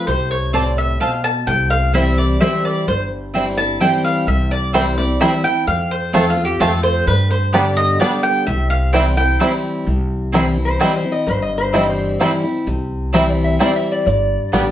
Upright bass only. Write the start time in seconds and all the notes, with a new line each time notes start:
0.07 C2
1.47 C2
2.87 G1
4.27 C2
5.67 F2
6.14 E2
6.60 F2
7.07 G2
8.47 C2
9.86 C2
11.27 G1
12.67 C2
14.06 G1
14.53 A1